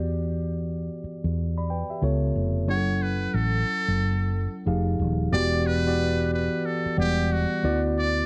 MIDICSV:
0, 0, Header, 1, 5, 480
1, 0, Start_track
1, 0, Tempo, 659341
1, 24, Time_signature, 4, 2, 24, 8
1, 6013, End_track
2, 0, Start_track
2, 0, Title_t, "Muted trumpet"
2, 0, Program_c, 0, 59
2, 1963, Note_on_c, 0, 73, 93
2, 2200, Note_on_c, 0, 71, 83
2, 2210, Note_off_c, 0, 73, 0
2, 2435, Note_on_c, 0, 69, 87
2, 2446, Note_off_c, 0, 71, 0
2, 3389, Note_off_c, 0, 69, 0
2, 3880, Note_on_c, 0, 74, 108
2, 4124, Note_on_c, 0, 71, 105
2, 4135, Note_off_c, 0, 74, 0
2, 4594, Note_off_c, 0, 71, 0
2, 4609, Note_on_c, 0, 71, 86
2, 4844, Note_on_c, 0, 69, 87
2, 4855, Note_off_c, 0, 71, 0
2, 5074, Note_off_c, 0, 69, 0
2, 5091, Note_on_c, 0, 67, 95
2, 5331, Note_on_c, 0, 66, 80
2, 5341, Note_off_c, 0, 67, 0
2, 5709, Note_off_c, 0, 66, 0
2, 5809, Note_on_c, 0, 74, 98
2, 6013, Note_off_c, 0, 74, 0
2, 6013, End_track
3, 0, Start_track
3, 0, Title_t, "Tine electric piano"
3, 0, Program_c, 1, 4
3, 0, Control_c, 1, 64, 127
3, 0, Note_on_c, 1, 52, 56
3, 0, Note_on_c, 1, 59, 53
3, 0, Note_on_c, 1, 66, 50
3, 0, Note_on_c, 1, 67, 53
3, 0, Note_on_c, 1, 74, 71
3, 730, Note_off_c, 1, 66, 0
3, 735, Note_off_c, 1, 67, 0
3, 739, Note_off_c, 1, 74, 0
3, 1147, Note_on_c, 1, 83, 51
3, 1151, Note_on_c, 1, 74, 47
3, 1226, Note_off_c, 1, 83, 0
3, 1227, Note_off_c, 1, 74, 0
3, 1239, Note_on_c, 1, 79, 57
3, 1243, Note_on_c, 1, 71, 41
3, 1376, Note_off_c, 1, 79, 0
3, 1378, Note_off_c, 1, 71, 0
3, 1385, Note_on_c, 1, 76, 51
3, 1391, Note_on_c, 1, 67, 39
3, 1434, Note_off_c, 1, 52, 0
3, 1439, Note_off_c, 1, 59, 0
3, 1467, Note_on_c, 1, 49, 65
3, 1470, Note_on_c, 1, 59, 63
3, 1474, Control_c, 1, 64, 0
3, 1475, Note_on_c, 1, 65, 61
3, 1480, Note_on_c, 1, 69, 61
3, 1482, Note_on_c, 1, 73, 73
3, 1595, Control_c, 1, 64, 127
3, 1608, Note_off_c, 1, 76, 0
3, 1612, Note_off_c, 1, 67, 0
3, 1945, Note_off_c, 1, 49, 0
3, 1946, Note_on_c, 1, 54, 58
3, 1947, Note_off_c, 1, 59, 0
3, 1949, Note_off_c, 1, 65, 0
3, 1951, Note_on_c, 1, 61, 54
3, 1952, Note_off_c, 1, 69, 0
3, 1953, Note_off_c, 1, 73, 0
3, 1953, Control_c, 1, 64, 0
3, 1958, Note_on_c, 1, 64, 53
3, 1966, Note_on_c, 1, 67, 43
3, 1973, Note_on_c, 1, 78, 56
3, 2013, Note_on_c, 1, 69, 54
3, 2015, Note_off_c, 1, 67, 0
3, 2072, Control_c, 1, 64, 127
3, 3356, Note_off_c, 1, 54, 0
3, 3359, Note_off_c, 1, 61, 0
3, 3362, Note_off_c, 1, 64, 0
3, 3370, Note_off_c, 1, 78, 0
3, 3390, Note_off_c, 1, 69, 0
3, 3390, Note_on_c, 1, 53, 69
3, 3392, Control_c, 1, 64, 0
3, 3395, Note_on_c, 1, 63, 62
3, 3399, Note_on_c, 1, 67, 65
3, 3401, Note_on_c, 1, 68, 63
3, 3404, Note_on_c, 1, 77, 69
3, 3538, Control_c, 1, 64, 127
3, 3867, Note_off_c, 1, 53, 0
3, 3869, Note_off_c, 1, 63, 0
3, 3872, Note_off_c, 1, 67, 0
3, 3872, Note_off_c, 1, 68, 0
3, 3873, Control_c, 1, 64, 0
3, 3873, Note_on_c, 1, 52, 93
3, 3874, Note_off_c, 1, 77, 0
3, 3876, Note_on_c, 1, 59, 89
3, 3879, Note_on_c, 1, 66, 89
3, 3883, Note_on_c, 1, 67, 94
3, 3888, Note_on_c, 1, 74, 102
3, 4000, Control_c, 1, 64, 127
3, 4182, Note_off_c, 1, 52, 0
3, 4183, Note_off_c, 1, 59, 0
3, 4185, Note_off_c, 1, 66, 0
3, 4187, Note_off_c, 1, 67, 0
3, 4189, Note_off_c, 1, 74, 0
3, 4267, Note_on_c, 1, 52, 68
3, 4269, Note_on_c, 1, 59, 67
3, 4273, Note_on_c, 1, 66, 69
3, 4276, Note_on_c, 1, 67, 67
3, 4280, Note_on_c, 1, 74, 84
3, 4950, Note_off_c, 1, 52, 0
3, 4951, Note_off_c, 1, 59, 0
3, 4953, Note_off_c, 1, 66, 0
3, 4955, Note_off_c, 1, 67, 0
3, 4957, Note_off_c, 1, 74, 0
3, 5073, Note_on_c, 1, 52, 71
3, 5077, Note_on_c, 1, 59, 58
3, 5080, Note_on_c, 1, 78, 57
3, 5081, Note_on_c, 1, 55, 58
3, 5085, Note_on_c, 1, 74, 71
3, 5548, Note_off_c, 1, 52, 0
3, 5550, Note_off_c, 1, 59, 0
3, 5552, Note_off_c, 1, 55, 0
3, 5552, Note_off_c, 1, 78, 0
3, 5553, Control_c, 1, 64, 0
3, 5554, Note_off_c, 1, 74, 0
3, 5554, Note_on_c, 1, 50, 81
3, 5559, Note_on_c, 1, 59, 66
3, 5562, Note_on_c, 1, 64, 72
3, 5567, Note_on_c, 1, 66, 71
3, 5568, Note_on_c, 1, 74, 98
3, 5670, Control_c, 1, 64, 127
3, 6013, Note_off_c, 1, 50, 0
3, 6013, Note_off_c, 1, 59, 0
3, 6013, Note_off_c, 1, 64, 0
3, 6013, Note_off_c, 1, 66, 0
3, 6013, Note_off_c, 1, 74, 0
3, 6013, End_track
4, 0, Start_track
4, 0, Title_t, "Fretless electric bass"
4, 0, Program_c, 2, 35
4, 0, Note_on_c, 2, 40, 71
4, 642, Note_off_c, 2, 40, 0
4, 904, Note_on_c, 2, 40, 66
4, 1326, Note_off_c, 2, 40, 0
4, 1472, Note_on_c, 2, 37, 77
4, 1681, Note_off_c, 2, 37, 0
4, 1714, Note_on_c, 2, 29, 69
4, 1953, Note_off_c, 2, 29, 0
4, 1953, Note_on_c, 2, 30, 92
4, 2375, Note_off_c, 2, 30, 0
4, 2433, Note_on_c, 2, 33, 74
4, 2642, Note_off_c, 2, 33, 0
4, 2826, Note_on_c, 2, 30, 75
4, 3247, Note_off_c, 2, 30, 0
4, 3396, Note_on_c, 2, 29, 89
4, 3604, Note_off_c, 2, 29, 0
4, 3635, Note_on_c, 2, 27, 82
4, 3843, Note_off_c, 2, 27, 0
4, 3878, Note_on_c, 2, 28, 103
4, 4713, Note_off_c, 2, 28, 0
4, 5080, Note_on_c, 2, 28, 95
4, 5420, Note_off_c, 2, 28, 0
4, 5562, Note_on_c, 2, 38, 97
4, 5980, Note_off_c, 2, 38, 0
4, 6013, End_track
5, 0, Start_track
5, 0, Title_t, "Muted fretless electric bass strokes"
5, 757, Note_on_c, 9, 29, 37
5, 830, Note_off_c, 9, 29, 0
5, 4992, Note_on_c, 9, 29, 45
5, 5064, Note_off_c, 9, 29, 0
5, 6013, End_track
0, 0, End_of_file